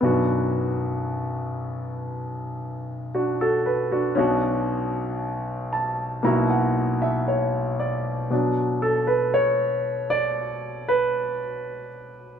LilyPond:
<<
  \new Staff \with { instrumentName = "Grand piano" } { \time 4/4 \key b \minor \tempo 4 = 58 r2. <d' fis'>16 <fis' a'>16 b'16 <d' fis'>16~ | <d' fis'>16 r4 r16 a''8 ais''16 fis''8 e''16 cis''8 d''8 | r8 a'16 b'16 cis''8. d''8. b'4 r8 | }
  \new Staff \with { instrumentName = "Grand piano" } { \time 4/4 \key b \minor <b,, fis, b d' fis'>1 | <b,, b, cis' d' fis'>2 <b,, b, ais e' fis'>2 | <b, fis d'>1 | }
>>